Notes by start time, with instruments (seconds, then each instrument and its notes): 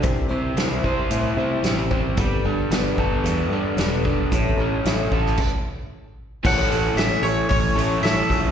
0.02 fingered electric bass C2, twelve-string acoustic guitar C3 E3 G3 C4 E4 C5, kick, closed hi-hat
0.29 fingered electric bass C2, twelve-string acoustic guitar G3 C4 E4 C5
0.57 fingered electric bass C2, twelve-string acoustic guitar C3 E3 G3 C4 E4 C5, snare, closed hi-hat
0.83 fingered electric bass C2, twelve-string acoustic guitar G3 C4 E4 C5, kick
1.10 fingered electric bass A2, twelve-string acoustic guitar G3 C4 E4 C5, closed hi-hat
1.37 fingered electric bass C3, twelve-string acoustic guitar G3 C4 E4 C5
1.63 fingered electric bass A1, twelve-string acoustic guitar C3 E3 G3 C4 E4, snare, closed hi-hat
1.68 twelve-string acoustic guitar C5
1.90 twelve-string acoustic guitar G3 C4 E4 C5, kick
2.17 fingered electric bass G1, twelve-string acoustic guitar G3 B3 D4 A4, kick, closed hi-hat
2.44 fingered electric bass G1, twelve-string acoustic guitar B3 D4 A4
2.70 fingered electric bass G1, twelve-string acoustic guitar G3 B3 D4 A4, snare, closed hi-hat
2.97 fingered electric bass G1, twelve-string acoustic guitar B3 D4 A4, kick
3.24 fingered electric bass E2, twelve-string acoustic guitar G3 B3 D4 A4, closed hi-hat
3.49 fingered electric bass G2, twelve-string acoustic guitar B3 A4
3.54 twelve-string acoustic guitar D4
3.77 fingered electric bass E1, twelve-string acoustic guitar G3 B3 D4 A4, snare, closed hi-hat
4.04 twelve-string acoustic guitar B3 D4 A4, kick
4.31 fingered electric bass A1, twelve-string acoustic guitar A2 A3 C#4 E4 A4, kick, closed hi-hat
4.57 fingered electric bass A1, twelve-string acoustic guitar C#4 E4 A4
4.84 fingered electric bass A1, twelve-string acoustic guitar A2 A3 C#4 E4 A4, snare, closed hi-hat
5.11 fingered electric bass A1, twelve-string acoustic guitar C#4 E4 A4, kick
5.26 snare
5.37 kick, crash
6.44 fingered electric bass A1, twelve-string acoustic guitar A2 A3 C#4 E4 A4, overdriven electric guitar E3, mandolin F#5, kick, crash
6.70 fingered electric bass A1, twelve-string acoustic guitar C#4 E4 A4, open hi-hat
6.96 fingered electric bass A1, twelve-string acoustic guitar A2 A3 C#4 E4 A4, mandolin E5, snare, open hi-hat
7.23 fingered electric bass A1, twelve-string acoustic guitar C#4 E4 A4, mandolin C#5, open hi-hat
7.49 fingered electric bass A1, twelve-string acoustic guitar A3 C#4 E4 A4, mandolin C#5, kick, open hi-hat
7.75 fingered electric bass A1, overdriven electric guitar A2 E3 A3, twelve-string acoustic guitar C#4 E4 A4, open hi-hat
8.02 fingered electric bass A1, twelve-string acoustic guitar A2 A3 C#4 E4 A4, overdriven electric guitar E3, mandolin E5, snare, open hi-hat
8.29 fingered electric bass A#1, twelve-string acoustic guitar C#4 E4 A4, kick, open hi-hat